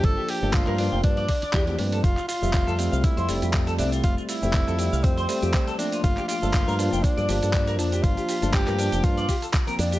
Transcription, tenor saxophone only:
X:1
M:4/4
L:1/8
Q:"Swing 16ths" 1/4=120
K:F
V:1 name="Tenor saxophone"
A G F2 D3 D | F F3 E2 z D | F E3 C3 D | F F3 D3 D |
F2 G2 F2 z D |]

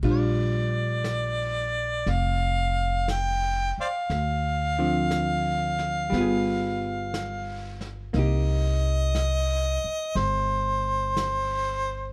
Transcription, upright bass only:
X:1
M:4/4
L:1/8
Q:"Swing" 1/4=59
K:Cm
V:1 name="Upright bass" clef=bass
B,,,4 F,,,3 z | D,,4 G,,,4 | C,,3 z G,,,4 |]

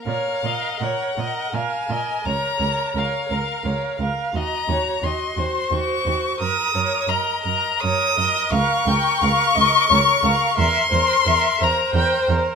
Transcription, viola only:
X:1
M:3/4
L:1/8
Q:1/4=87
K:Bbm
V:1 name="Viola"
B B B B B B | B B B B B B | G G G G G G | B B B B B B |
[K:Bbdor] B B B B B B | B B B B B B |]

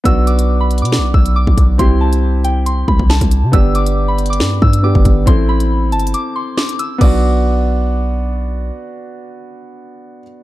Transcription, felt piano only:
X:1
M:4/4
L:1/8
Q:1/4=138
K:Bphr
V:1 name="Felt piano"
[B,DF]8 | [CEG]8 | [B,DG]6 [B,DG]2 | [CEA]8 |
[B,DF]8- | [B,DF]8 |]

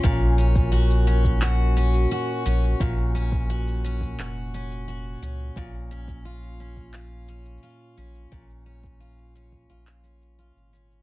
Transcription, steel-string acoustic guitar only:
X:1
M:4/4
L:1/8
Q:1/4=87
K:Bbm
V:1 name="Steel-string acoustic guitar"
B,, D G D G D G D | B,, D G D G D G D | B,, D F D F D F D | B,, D F D F D F D |]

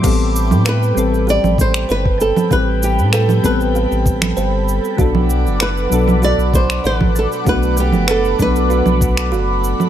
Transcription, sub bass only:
X:1
M:4/4
L:1/16
Q:1/4=97
K:Ador
V:1 name="Sub bass" clef=bass
A,,,3 A,,3 A,,,3 A,,,3 G,,,3 z | A,,,3 A,,3 A,,,3 A,,,3 G,,,3 z | B,,,3 F,,,3 B,,,3 B,,,3 A,,,3 z | B,,,3 F,,,3 B,,,3 B,,,3 F,,,3 z |]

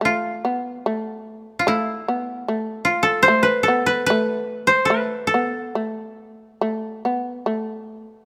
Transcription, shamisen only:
X:1
M:2/4
L:1/8
Q:1/4=73
K:none
V:1 name="Shamisen"
A, B, A,2 | A, B, A,2 | A, B, A,2 | A, B, A,2 |
A, B, A,2 |]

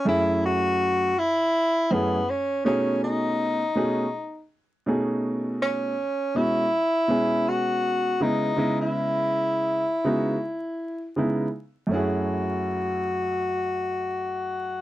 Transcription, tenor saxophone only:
X:1
M:4/4
L:1/16
Q:"Swing 16ths" 1/4=81
K:F#dor
V:1 name="Tenor saxophone"
E2 F4 E4 B,2 C2 C2 | D8 z6 C2- | C2 E6 F4 D3 E- | E12 z4 |
F16 |]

